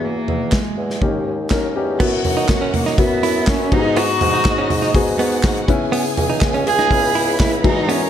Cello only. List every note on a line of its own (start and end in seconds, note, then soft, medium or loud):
0.05 0.55 A#3 medium
0.53 1.27 G#3 medium
2.74 2.97 A#3 medium
2.99 3.50 B3 medium
3.49 3.74 C#4 medium
3.73 3.99 D#4 medium
3.98 4.95 F#4 loud
6.67 7.36 G#4 loud
7.40 7.63 E4 medium
7.65 7.91 D#4 medium
7.90 8.10 C#4 medium